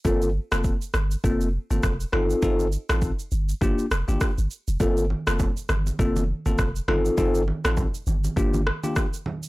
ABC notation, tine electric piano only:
X:1
M:4/4
L:1/16
Q:"Swing 16ths" 1/4=101
K:Gm
V:1 name="Tine electric piano"
[B,CFA]2 z [B,CFA] z4 [B,CFA]2 z [B,CFA] z2 [CEFA]2 | [CEFA]2 z [CEFA] z4 [B,DFG]2 z [B,DFG] z4 | [B,CFA]2 z [B,CFA] z4 [B,CFA]2 z [B,CFA] z2 [CEFA]2 | [CEFA]2 z [CEFA] z4 [B,DFG]2 z [B,DFG] z4 |]